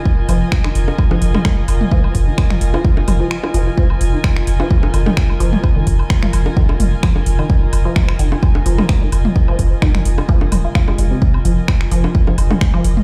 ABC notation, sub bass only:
X:1
M:4/4
L:1/8
Q:"Swing 16ths" 1/4=129
K:Fm
V:1 name="Sub bass" clef=bass
z F,,, z F,,, z F,,, z F,,, | z F,,, z F,,, z F,,, z F,,, | z F,,, z F,,, z F,,, z F,,, | z F,,, z F,,, z F,,, z F,,, |
z F,,, z F,,, z F,,, z F,,, | z F,,, z F,,, z E,,, z F,,, | z F,,, z F,,, z F,,, z F,,, |]